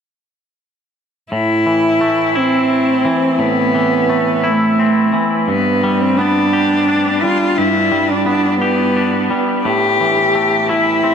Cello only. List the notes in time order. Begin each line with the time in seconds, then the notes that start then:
1.32 E4
2.37 C4
3.40 B3
4.46 A3
5.49 B3
6.01 C4
6.18 D4
7.22 F4
7.58 E4
8.11 D4
8.28 D4
8.62 B3
9.65 G4
10.70 E4